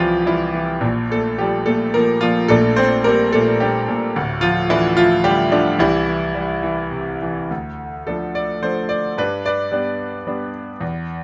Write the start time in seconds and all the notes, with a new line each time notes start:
Already playing: C2 E3 F3 G3 C4 E4 F4 G4
0.25 E3 G3 E4
0.53 E3
0.81 A#1 A#2
1.10 A#2 A4
1.14 A3
1.38 F3 G3 G4
1.66 A#2 A3 A4
1.94 F3 A#3 A#4
2.21 A#2 F3 F4
2.48 A#1 A#2 A3 D4 A4
2.76 A#2 C4 C5
3.04 G3 A#3 A#4
3.32 A#2 A3 A4
3.60 G3 D4 G4
3.89 A#2
4.16 D1 D2
4.41 F3 F4
4.70 D3 E3 E4
4.97 F3 F4
5.24 D3 G3 G4
5.52 D3 F3 D4
5.79 C2 E3 G3 E4
6.08 E3
6.35 G3
6.63 E3
6.91 C3
7.22 E3
7.51 D2
8.07 F3 A3 D4 A4
8.35 D5
8.62 F3 A3 D4 C5
8.89 D5
9.18 G2 D4 B4
9.46 B4 D5
9.71 G3 B3 D4
10.27 G3 B3 D4
10.80 E2